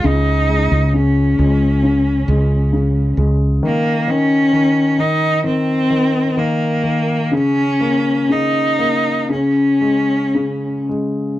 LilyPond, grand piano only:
\new Staff \with { instrumentName = "Grand piano" } { \clef bass \time 4/4 \key bes \minor \tempo 4 = 66 <des aes>8 aes8 des8 aes8 des8 aes8 des8 aes8 | ees8 ees8 ees8 ees8 ees8 ees8 ees8 ees8 | des8 bes8 des8 bes8 des8 aes8 des8 aes8 | }